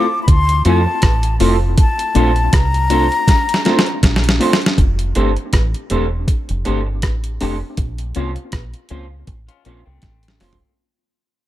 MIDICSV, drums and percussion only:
0, 0, Header, 1, 2, 480
1, 0, Start_track
1, 0, Tempo, 750000
1, 1137, Time_signature, 4, 2, 24, 8
1, 7346, End_track
2, 0, Start_track
2, 0, Title_t, "Drums"
2, 178, Note_on_c, 9, 36, 113
2, 179, Note_on_c, 9, 42, 85
2, 242, Note_off_c, 9, 36, 0
2, 243, Note_off_c, 9, 42, 0
2, 313, Note_on_c, 9, 42, 54
2, 377, Note_off_c, 9, 42, 0
2, 416, Note_on_c, 9, 42, 67
2, 480, Note_off_c, 9, 42, 0
2, 652, Note_on_c, 9, 42, 85
2, 658, Note_on_c, 9, 36, 121
2, 659, Note_on_c, 9, 37, 127
2, 716, Note_off_c, 9, 42, 0
2, 722, Note_off_c, 9, 36, 0
2, 723, Note_off_c, 9, 37, 0
2, 788, Note_on_c, 9, 42, 63
2, 852, Note_off_c, 9, 42, 0
2, 896, Note_on_c, 9, 46, 81
2, 960, Note_off_c, 9, 46, 0
2, 1136, Note_on_c, 9, 42, 90
2, 1137, Note_on_c, 9, 36, 112
2, 1200, Note_off_c, 9, 42, 0
2, 1201, Note_off_c, 9, 36, 0
2, 1274, Note_on_c, 9, 42, 58
2, 1338, Note_off_c, 9, 42, 0
2, 1377, Note_on_c, 9, 42, 67
2, 1441, Note_off_c, 9, 42, 0
2, 1509, Note_on_c, 9, 42, 36
2, 1573, Note_off_c, 9, 42, 0
2, 1618, Note_on_c, 9, 42, 99
2, 1619, Note_on_c, 9, 36, 122
2, 1624, Note_on_c, 9, 37, 122
2, 1682, Note_off_c, 9, 42, 0
2, 1683, Note_off_c, 9, 36, 0
2, 1688, Note_off_c, 9, 37, 0
2, 1755, Note_on_c, 9, 42, 50
2, 1819, Note_off_c, 9, 42, 0
2, 1856, Note_on_c, 9, 42, 80
2, 1920, Note_off_c, 9, 42, 0
2, 1996, Note_on_c, 9, 42, 34
2, 2060, Note_off_c, 9, 42, 0
2, 2097, Note_on_c, 9, 36, 108
2, 2100, Note_on_c, 9, 42, 85
2, 2105, Note_on_c, 9, 38, 56
2, 2161, Note_off_c, 9, 36, 0
2, 2164, Note_off_c, 9, 42, 0
2, 2169, Note_off_c, 9, 38, 0
2, 2233, Note_on_c, 9, 42, 57
2, 2266, Note_on_c, 9, 38, 63
2, 2297, Note_off_c, 9, 42, 0
2, 2330, Note_off_c, 9, 38, 0
2, 2336, Note_on_c, 9, 42, 63
2, 2344, Note_on_c, 9, 38, 61
2, 2400, Note_off_c, 9, 42, 0
2, 2408, Note_off_c, 9, 38, 0
2, 2424, Note_on_c, 9, 38, 83
2, 2473, Note_on_c, 9, 42, 36
2, 2488, Note_off_c, 9, 38, 0
2, 2537, Note_off_c, 9, 42, 0
2, 2578, Note_on_c, 9, 42, 94
2, 2580, Note_on_c, 9, 36, 113
2, 2586, Note_on_c, 9, 38, 97
2, 2642, Note_off_c, 9, 42, 0
2, 2644, Note_off_c, 9, 36, 0
2, 2650, Note_off_c, 9, 38, 0
2, 2664, Note_on_c, 9, 38, 86
2, 2712, Note_on_c, 9, 42, 59
2, 2728, Note_off_c, 9, 38, 0
2, 2744, Note_on_c, 9, 38, 95
2, 2776, Note_off_c, 9, 42, 0
2, 2808, Note_off_c, 9, 38, 0
2, 2820, Note_on_c, 9, 46, 73
2, 2884, Note_off_c, 9, 46, 0
2, 2902, Note_on_c, 9, 38, 103
2, 2954, Note_on_c, 9, 42, 36
2, 2966, Note_off_c, 9, 38, 0
2, 2985, Note_on_c, 9, 38, 100
2, 3018, Note_off_c, 9, 42, 0
2, 3049, Note_off_c, 9, 38, 0
2, 3059, Note_on_c, 9, 36, 110
2, 3061, Note_on_c, 9, 42, 86
2, 3123, Note_off_c, 9, 36, 0
2, 3125, Note_off_c, 9, 42, 0
2, 3193, Note_on_c, 9, 42, 56
2, 3257, Note_off_c, 9, 42, 0
2, 3297, Note_on_c, 9, 42, 70
2, 3361, Note_off_c, 9, 42, 0
2, 3434, Note_on_c, 9, 42, 33
2, 3498, Note_off_c, 9, 42, 0
2, 3537, Note_on_c, 9, 42, 95
2, 3540, Note_on_c, 9, 36, 113
2, 3543, Note_on_c, 9, 37, 112
2, 3601, Note_off_c, 9, 42, 0
2, 3604, Note_off_c, 9, 36, 0
2, 3607, Note_off_c, 9, 37, 0
2, 3676, Note_on_c, 9, 42, 48
2, 3740, Note_off_c, 9, 42, 0
2, 3775, Note_on_c, 9, 42, 75
2, 3839, Note_off_c, 9, 42, 0
2, 4018, Note_on_c, 9, 36, 105
2, 4019, Note_on_c, 9, 42, 82
2, 4082, Note_off_c, 9, 36, 0
2, 4083, Note_off_c, 9, 42, 0
2, 4153, Note_on_c, 9, 42, 52
2, 4217, Note_off_c, 9, 42, 0
2, 4257, Note_on_c, 9, 42, 59
2, 4321, Note_off_c, 9, 42, 0
2, 4494, Note_on_c, 9, 42, 88
2, 4499, Note_on_c, 9, 36, 112
2, 4501, Note_on_c, 9, 37, 121
2, 4558, Note_off_c, 9, 42, 0
2, 4563, Note_off_c, 9, 36, 0
2, 4565, Note_off_c, 9, 37, 0
2, 4632, Note_on_c, 9, 42, 62
2, 4696, Note_off_c, 9, 42, 0
2, 4740, Note_on_c, 9, 46, 74
2, 4804, Note_off_c, 9, 46, 0
2, 4975, Note_on_c, 9, 42, 81
2, 4978, Note_on_c, 9, 36, 121
2, 5039, Note_off_c, 9, 42, 0
2, 5042, Note_off_c, 9, 36, 0
2, 5110, Note_on_c, 9, 42, 56
2, 5174, Note_off_c, 9, 42, 0
2, 5214, Note_on_c, 9, 42, 70
2, 5278, Note_off_c, 9, 42, 0
2, 5349, Note_on_c, 9, 42, 33
2, 5413, Note_off_c, 9, 42, 0
2, 5453, Note_on_c, 9, 42, 85
2, 5458, Note_on_c, 9, 36, 109
2, 5459, Note_on_c, 9, 37, 122
2, 5517, Note_off_c, 9, 42, 0
2, 5522, Note_off_c, 9, 36, 0
2, 5523, Note_off_c, 9, 37, 0
2, 5591, Note_on_c, 9, 42, 46
2, 5655, Note_off_c, 9, 42, 0
2, 5688, Note_on_c, 9, 42, 74
2, 5752, Note_off_c, 9, 42, 0
2, 5935, Note_on_c, 9, 42, 78
2, 5936, Note_on_c, 9, 36, 99
2, 5999, Note_off_c, 9, 42, 0
2, 6000, Note_off_c, 9, 36, 0
2, 6071, Note_on_c, 9, 42, 53
2, 6135, Note_off_c, 9, 42, 0
2, 6176, Note_on_c, 9, 42, 64
2, 6240, Note_off_c, 9, 42, 0
2, 6411, Note_on_c, 9, 42, 90
2, 6418, Note_on_c, 9, 36, 113
2, 6419, Note_on_c, 9, 38, 54
2, 6475, Note_off_c, 9, 42, 0
2, 6482, Note_off_c, 9, 36, 0
2, 6483, Note_off_c, 9, 38, 0
2, 6546, Note_on_c, 9, 42, 57
2, 6581, Note_on_c, 9, 38, 74
2, 6610, Note_off_c, 9, 42, 0
2, 6645, Note_off_c, 9, 38, 0
2, 6657, Note_on_c, 9, 46, 72
2, 6661, Note_on_c, 9, 38, 66
2, 6721, Note_off_c, 9, 46, 0
2, 6725, Note_off_c, 9, 38, 0
2, 6737, Note_on_c, 9, 43, 89
2, 6801, Note_off_c, 9, 43, 0
2, 7346, End_track
0, 0, End_of_file